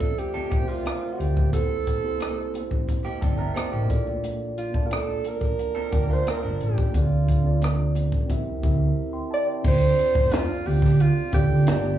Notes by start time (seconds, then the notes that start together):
Already playing: A3 C4 F4 A4 C5 D5 E5
0.00 kick, cross-stick, low conga
0.18 G4, closed hi-hat, muted conga
0.34 C4 A4, muted fingered electric bass stroke
0.50 C2 A3 C4 F4 G4 A#4 E5, kick, closed hi-hat, muted conga
0.60 C5
0.68 A3 F4
0.85 cross-stick, closed hi-hat, high conga
1.13 F#4
1.19 D2 G4, closed hi-hat
1.37 kick, high conga
1.51 C2 A#3 C4 E4 G4 A4 C5, kick, closed hi-hat
1.87 kick, closed hi-hat
2.02 A#3 C4 E4 G4 C5
2.20 cross-stick, closed hi-hat, high conga
2.54 closed hi-hat, muted conga
2.71 kick, low conga
2.88 kick, closed hi-hat, low conga
3.05 A#3 G4, muted fingered electric bass stroke
3.21 G1 C4 A4 D5 G5, kick, closed hi-hat, muted conga, low conga
3.38 D4 A#4 E5
3.54 C4 G4 A4 C5, cross-stick, closed hi-hat, high conga
3.72 A1 A#3 E4 G4
3.87 A#1 A#3 D4 F4 A4 D5, kick, closed hi-hat
4.07 high conga
4.24 closed hi-hat
4.58 F4, closed hi-hat
4.72 A#3 D4 F4 D5 A5, kick
4.87 A#4
4.91 A4, cross-stick, closed hi-hat, high conga
5.24 A#4, closed hi-hat, muted conga
5.41 kick, cross-stick, low conga
5.59 closed hi-hat
5.75 C4 A4
5.91 D2 A#2 A#3 D4 F4 G4 D5 A5, kick, closed hi-hat, muted conga
6.10 A3 F4 C5
6.26 cross-stick, closed hi-hat, high conga
6.30 A#4
6.43 G1 F3 D4
6.61 A1 G4, closed hi-hat
6.78 kick, high conga
6.93 D2 C4 D4 F4 A4 D5, kick, closed hi-hat
6.99 F4
7.29 kick, closed hi-hat
7.44 C4 D4 F4 A4 D5
7.62 cross-stick, closed hi-hat, high conga
7.95 closed hi-hat, muted conga
8.12 kick, low conga
8.28 C2 C4 E4 G4 A#4 E5, kick, closed hi-hat, muted conga, low conga
8.62 D2 C4 E4 G4 A#4 E5, kick, closed hi-hat, muted conga, low conga
9.13 G5 C6
9.31 D5 E5 A5
9.47 D5 G5
9.62 D2 C4 D4 F4 A4, kick, crash
9.68 C5
9.99 closed hi-hat
10.15 F2, kick
10.31 F4, snare, closed hi-hat, high conga
10.66 D2 G4, open hi-hat, muted conga
10.82 D3, kick, snare
11.00 F4, closed hi-hat, muted conga
11.32 D2 C4 D4 F4 G4 A4, kick, closed hi-hat, muted conga
11.36 D5
11.51 D3
11.66 G1 B3 D4 F4 G4 D5, snare, closed hi-hat, high conga